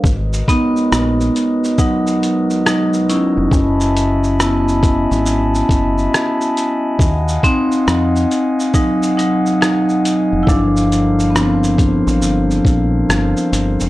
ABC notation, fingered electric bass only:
X:1
M:4/4
L:1/16
Q:"Swing 16ths" 1/4=69
K:D#m
V:1 name="Fingered electric bass" clef=bass
G,,,2 z2 A,,,2 z8 z E,,, | F,,,6- F,,, G,,,3 F,,,2 z4 | D,,2 z2 E,,2 z8 z E,,, | =G,,,6- G,,, =A,,, G,,,2 _B,,,2 G,,, z G,,, =F,,, |]